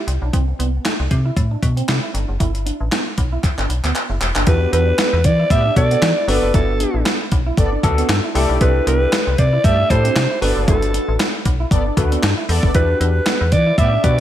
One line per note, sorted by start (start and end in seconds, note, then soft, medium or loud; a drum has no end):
0.07 0.18 C2 medium
0.07 muted clean electric guitar stroke soft
0.07 closed hi-hat medium
0.22 0.30 B1 medium
0.22 0.30 D4 medium
0.33 0.53 C2 loud
0.33 0.43 C4 medium
0.33 kick loud
0.33 closed hi-hat medium
0.48 muted clean electric guitar stroke soft
0.59 0.79 C2 medium
0.59 0.69 B3 medium
0.59 closed hi-hat medium
0.85 0.95 A3 medium
0.85 snare medium
0.85 clap medium
0.85 closed hi-hat medium
1.00 1.08 C2 medium
1.00 muted clean electric guitar stroke soft
1.11 1.31 C3 loud
1.11 kick medium
1.11 closed hi-hat medium
1.25 1.33 E4 medium
1.36 1.56 A2 medium
1.36 kick loud
1.36 closed hi-hat medium
1.51 1.59 D4 medium
1.62 1.82 B2 medium
1.62 muted clean electric guitar stroke soft
1.62 kick medium
1.62 closed hi-hat medium
1.77 1.85 C4 medium
1.77 closed hi-hat medium
1.88 2.00 C3 medium
1.88 muted clean electric guitar stroke soft
1.88 snare loud
1.88 clap medium
1.88 closed hi-hat medium
2.03 2.11 E4 medium
2.14 2.25 G1 loud
2.14 2.24 D4 medium
2.14 closed hi-hat medium
2.28 2.37 F#1 medium
2.40 2.71 G1 loud
2.40 2.50 E4 medium
2.40 kick loud
2.40 closed hi-hat medium
2.54 muted clean electric guitar stroke soft
2.54 closed hi-hat soft
2.66 2.76 D4 medium
2.66 closed hi-hat medium
2.80 2.89 A1 medium
2.92 3.02 B3 medium
2.92 snare loud
2.92 clap medium
2.92 closed hi-hat medium
3.07 muted clean electric guitar stroke soft
3.18 3.37 B1 loud
3.18 kick medium
3.18 closed hi-hat medium
3.32 3.40 E4 medium
3.44 kick loud
3.44 clap soft
3.44 closed hi-hat medium
3.58 3.67 G1 medium
3.58 3.66 D4 medium
3.58 clap medium
3.69 3.80 B1 medium
3.69 muted clean electric guitar stroke soft
3.69 closed hi-hat medium
3.84 3.92 D2 medium
3.84 3.92 B3 medium
3.84 clap medium
3.84 closed hi-hat medium
3.95 clap medium
3.95 closed hi-hat medium
4.09 4.18 F#1 medium
4.09 4.18 E4 medium
4.21 4.32 E1 medium
4.21 muted clean electric guitar stroke soft
4.21 clap medium
4.21 closed hi-hat medium
4.36 4.44 F#1 medium
4.36 4.44 D4 medium
4.36 clap medium
4.47 4.67 E2 loud
4.47 4.93 B3 medium
4.47 4.93 D4 medium
4.47 4.57 E4 medium
4.47 4.93 F#4 medium
4.47 4.93 G4 medium
4.47 4.72 B4 loud
4.47 kick loud
4.47 closed hi-hat medium
4.62 muted clean electric guitar stroke soft
4.73 4.92 E2 loud
4.73 4.83 D4 medium
4.73 5.27 B4 loud
4.73 closed hi-hat medium
4.98 5.09 B3 medium
4.98 snare loud
4.98 clap medium
4.98 closed hi-hat medium
5.13 5.26 E2 loud
5.13 muted clean electric guitar stroke soft
5.24 5.44 E3 loud
5.24 5.53 D5 loud
5.24 kick medium
5.24 closed hi-hat medium
5.39 5.47 E4 medium
5.50 5.70 A2 medium
5.50 5.63 B3 medium
5.50 5.63 G4 medium
5.50 5.63 D5 loud
5.50 5.77 E5 loud
5.50 kick loud
5.50 closed hi-hat medium
5.65 5.73 D4 medium
5.76 5.96 B2 medium
5.76 6.11 B3 medium
5.76 6.11 D4 medium
5.76 6.11 F#4 medium
5.76 6.12 A4 medium
5.76 6.30 D5 loud
5.76 muted clean electric guitar stroke soft
5.76 kick loud
5.76 closed hi-hat medium
5.91 5.99 B3 medium
5.91 closed hi-hat medium
6.02 6.13 E3 loud
6.02 snare loud
6.02 clap medium
6.02 closed hi-hat loud
6.17 6.25 E4 medium
6.28 6.39 G1 loud
6.28 6.50 B3 medium
6.28 7.11 B3 medium
6.28 7.12 D4 medium
6.28 6.39 D4 medium
6.28 7.12 F#4 medium
6.28 6.50 A4 medium
6.28 7.12 A4 medium
6.28 6.54 B4 loud
6.28 6.50 D5 loud
6.28 open hi-hat medium
6.42 6.51 F#1 medium
6.54 6.85 G1 loud
6.54 6.65 E4 loud
6.54 7.02 A4 medium
6.54 kick loud
6.54 closed hi-hat medium
6.69 muted clean electric guitar stroke soft
6.80 6.90 D4 medium
6.80 closed hi-hat medium
6.94 7.03 A1 medium
7.06 7.16 B3 medium
7.06 snare loud
7.06 clap medium
7.06 closed hi-hat loud
7.21 muted clean electric guitar stroke soft
7.32 7.51 B1 loud
7.32 kick medium
7.32 closed hi-hat medium
7.46 7.54 E4 medium
7.57 7.77 G1 medium
7.57 7.70 B3 medium
7.57 7.70 A4 medium
7.57 7.70 D5 medium
7.57 kick loud
7.57 closed hi-hat medium
7.72 7.80 D4 medium
7.83 8.03 D2 medium
7.83 8.18 B3 medium
7.83 8.18 D4 medium
7.83 8.19 F#4 medium
7.83 8.19 A4 loud
7.83 muted clean electric guitar stroke soft
7.83 kick loud
7.83 closed hi-hat medium
7.98 8.06 B3 medium
7.98 closed hi-hat medium
8.09 8.20 G2 loud
8.09 snare loud
8.09 clap medium
8.09 closed hi-hat loud
8.24 8.32 E4 medium
8.35 8.46 C2 loud
8.35 8.57 A3 medium
8.35 9.18 D4 loud
8.35 9.18 E4 medium
8.35 9.18 G4 loud
8.35 8.57 G4 medium
8.35 9.19 A4 loud
8.35 8.57 D5 loud
8.35 muted clean electric guitar stroke soft
8.35 open hi-hat medium
8.49 8.58 B1 medium
8.49 8.58 D4 medium
8.61 8.81 C2 loud
8.61 8.71 C4 medium
8.61 8.85 B4 loud
8.61 kick loud
8.61 closed hi-hat medium
8.76 muted clean electric guitar stroke soft
8.87 9.06 C2 loud
8.87 8.97 B3 medium
8.87 9.40 B4 loud
8.87 closed hi-hat medium
9.12 9.23 A3 medium
9.12 snare loud
9.12 clap medium
9.12 closed hi-hat medium
9.27 9.36 C2 loud
9.27 muted clean electric guitar stroke soft
9.38 9.58 C3 loud
9.38 9.66 D5 loud
9.38 kick medium
9.38 closed hi-hat medium
9.53 9.61 E4 medium
9.64 9.84 G2 loud
9.64 9.77 A3 medium
9.64 9.77 G4 medium
9.64 9.77 D5 loud
9.64 9.92 E5 loud
9.64 kick loud
9.64 closed hi-hat medium
9.79 9.87 D4 medium
9.90 10.10 A2 loud
9.90 10.25 D4 medium
9.90 10.25 E4 medium
9.90 10.25 G4 medium
9.90 10.26 A4 medium
9.90 10.41 C5 loud
9.90 muted clean electric guitar stroke soft
9.90 kick loud
9.90 closed hi-hat medium
10.04 10.12 C4 medium
10.04 closed hi-hat medium
10.16 10.27 C3 medium
10.16 snare loud
10.16 clap medium
10.16 closed hi-hat loud
10.30 10.38 E4 medium
10.41 10.53 G1 loud
10.41 10.77 B3 loud
10.41 11.25 D4 medium
10.41 10.52 D4 medium
10.41 11.25 F#4 medium
10.41 11.25 A4 medium
10.41 10.77 A4 medium
10.41 10.53 B4 medium
10.41 11.25 B4 medium
10.41 10.76 D5 loud
10.41 open hi-hat medium
10.56 10.65 F#1 medium
10.67 10.99 G1 loud
10.67 10.78 E4 medium
10.67 11.16 A4 medium
10.67 kick loud
10.67 closed hi-hat medium
10.82 muted clean electric guitar stroke soft
10.82 closed hi-hat medium
10.94 11.04 D4 medium
10.94 closed hi-hat medium
11.08 11.17 A1 loud
11.20 11.30 B3 medium
11.20 snare loud
11.20 clap medium
11.20 closed hi-hat loud
11.34 muted clean electric guitar stroke soft
11.45 11.65 B1 loud
11.45 kick medium
11.45 closed hi-hat medium
11.60 11.68 E4 medium
11.71 11.91 G1 loud
11.71 11.84 B3 medium
11.71 11.84 A4 medium
11.71 11.84 D5 medium
11.71 kick loud
11.71 closed hi-hat medium
11.86 11.94 D4 medium
11.97 12.17 D2 medium
11.97 12.32 D4 medium
11.97 12.32 F#4 medium
11.97 12.32 A4 medium
11.97 12.32 B4 loud
11.97 muted clean electric guitar stroke soft
11.97 kick loud
11.97 closed hi-hat medium
12.12 12.20 B3 medium
12.12 closed hi-hat medium
12.23 12.34 G2 loud
12.23 snare loud
12.23 clap medium
12.23 closed hi-hat loud
12.37 12.45 E4 medium
12.49 12.60 E2 loud
12.49 12.71 B3 medium
12.49 12.71 A4 loud
12.49 12.71 D5 loud
12.49 muted clean electric guitar stroke soft
12.49 open hi-hat medium
12.63 12.72 F#1 medium
12.63 12.71 D4 medium
12.63 kick loud
12.74 12.94 E2 loud
12.74 13.21 D4 medium
12.74 12.85 E4 medium
12.74 13.21 F#4 medium
12.74 13.21 G4 medium
12.74 12.99 B4 loud
12.74 13.21 B4 medium
12.74 kick loud
12.74 closed hi-hat medium
12.90 muted clean electric guitar stroke soft
13.00 13.20 E2 loud
13.00 13.11 D4 medium
13.00 13.54 B4 loud
13.00 closed hi-hat medium
13.26 13.37 B3 medium
13.26 snare loud
13.26 clap medium
13.26 closed hi-hat medium
13.41 13.54 E2 loud
13.41 muted clean electric guitar stroke medium
13.52 13.72 E3 loud
13.52 13.77 D5 loud
13.52 kick medium
13.52 closed hi-hat medium
13.67 13.75 E4 medium
13.78 13.98 A2 loud
13.78 13.90 B3 medium
13.78 13.90 G4 medium
13.78 13.91 D5 medium
13.78 14.06 E5 loud
13.78 kick loud
13.78 closed hi-hat medium
13.92 14.00 D4 medium
14.03 14.20 B2 medium
14.03 14.20 D4 medium
14.03 14.20 F#4 medium
14.03 14.20 G4 medium
14.03 14.20 B4 medium
14.03 14.20 D5 loud
14.03 muted clean electric guitar stroke soft
14.03 kick loud
14.03 closed hi-hat medium